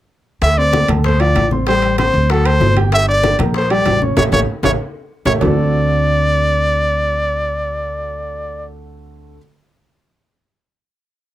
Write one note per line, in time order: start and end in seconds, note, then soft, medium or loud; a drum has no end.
0.41 0.85 D2 medium
0.41 0.60 E5 loud
0.41 high bongo medium
0.41 high conga soft
0.41 high timbale medium
0.57 0.83 C4 medium
0.57 0.84 C5 medium
0.57 0.89 D5 loud
0.57 0.84 C6 medium
0.57 high bongo soft
0.57 high conga soft
0.73 high bongo medium
0.73 high conga loud
0.73 high timbale medium
0.88 1.32 D2 medium
0.88 1.14 A3 medium
0.88 1.15 A4 medium
0.88 1.15 A5 medium
0.88 high bongo soft
0.88 high conga loud
0.88 low conga medium
0.88 high timbale medium
1.04 1.22 C5 medium
1.04 high bongo medium
1.04 high conga soft
1.04 low conga medium
1.20 1.46 F3 medium
1.20 1.46 F4 medium
1.20 1.52 D5 loud
1.20 1.46 F5 medium
1.20 high conga soft
1.20 high timbale medium
1.35 2.08 A1 medium
1.35 high bongo soft
1.35 low bongo medium
1.35 high conga medium
1.35 high timbale medium
1.51 1.65 C4 medium
1.51 1.65 C5 medium
1.51 1.65 C6 medium
1.51 high bongo soft
1.51 high conga medium
1.67 1.93 G3 medium
1.67 1.93 G4 medium
1.67 1.97 C5 loud
1.67 1.93 G5 medium
1.67 high bongo medium
1.67 high conga soft
1.67 high timbale medium
1.82 high bongo soft
1.82 high conga soft
1.82 high timbale medium
1.98 2.24 C4 medium
1.98 2.24 C5 medium
1.98 2.33 C5 medium
1.98 2.24 C6 medium
1.98 high bongo medium
1.98 high conga medium
1.98 high timbale medium
2.13 2.57 D2 loud
2.13 high bongo soft
2.13 high conga soft
2.30 2.43 F#3 medium
2.30 2.43 F#4 medium
2.30 2.48 A4 medium
2.30 2.43 F#5 medium
2.30 high bongo medium
2.30 high conga soft
2.30 high timbale medium
2.45 2.71 A3 medium
2.45 2.71 A4 medium
2.45 2.77 C5 loud
2.45 2.71 A5 medium
2.45 high conga soft
2.45 high timbale loud
2.60 3.33 G1 loud
2.60 high bongo soft
2.60 low bongo medium
2.60 high conga medium
2.60 low timbale medium
2.76 3.02 G4 medium
2.76 3.02 G5 medium
2.76 3.03 G6 medium
2.76 high bongo soft
2.76 high conga medium
2.76 high timbale medium
2.92 3.08 E5 loud
2.92 high bongo medium
2.92 high conga soft
2.92 high timbale medium
3.08 3.33 D4 medium
3.08 3.34 D5 medium
3.08 3.37 D5 loud
3.08 3.34 D6 medium
3.08 high bongo soft
3.08 high conga soft
3.23 high bongo medium
3.23 high conga loud
3.23 high timbale medium
3.39 3.82 A#1 loud
3.39 3.65 A#3 medium
3.39 3.65 A#4 medium
3.39 3.65 A#5 medium
3.39 high bongo soft
3.39 high conga loud
3.39 low conga medium
3.39 high timbale medium
3.54 3.72 C5 medium
3.54 high bongo medium
3.54 high conga soft
3.70 3.96 G3 medium
3.70 3.96 G4 medium
3.70 4.02 D5 loud
3.70 3.96 G5 medium
3.70 high conga soft
3.70 high timbale medium
3.85 4.15 A1 medium
3.85 high bongo soft
3.85 low bongo medium
3.85 high conga medium
3.85 high timbale medium
3.85 low timbale medium
4.02 4.14 C#4 medium
4.02 4.15 C#5 medium
4.02 4.15 C#6 medium
4.02 high bongo soft
4.02 high conga medium
4.16 4.28 A1 medium
4.16 4.27 G4 loud
4.16 4.27 A4 loud
4.16 4.24 C#5 medium
4.16 4.27 C#5 medium
4.16 high bongo loud
4.16 high conga loud
4.16 high timbale loud
4.32 4.44 A1 medium
4.32 4.43 G4 medium
4.32 4.43 A4 medium
4.32 4.43 C#5 medium
4.32 4.40 C#5 medium
4.32 high bongo loud
4.32 high conga loud
4.32 high timbale medium
4.63 4.75 A1 loud
4.63 4.74 G4 medium
4.63 4.74 A4 medium
4.63 4.74 C#5 medium
4.63 4.72 C#5 medium
4.63 high bongo loud
4.63 high conga loud
4.63 high timbale loud
5.25 5.37 A1 medium
5.25 5.36 G4 loud
5.25 5.36 A4 loud
5.25 5.33 C#5 medium
5.25 5.36 C#5 loud
5.25 high bongo medium
5.25 high conga loud
5.25 high timbale loud
5.41 9.36 D2 loud
5.41 9.36 D3 medium
5.41 9.36 A3 medium
5.41 9.37 C4 medium
5.41 9.37 D4 medium
5.41 9.37 F#4 medium
5.41 9.37 A4 loud
5.41 8.66 D5 medium
5.41 low bongo loud
5.41 low conga loud
5.41 low timbale loud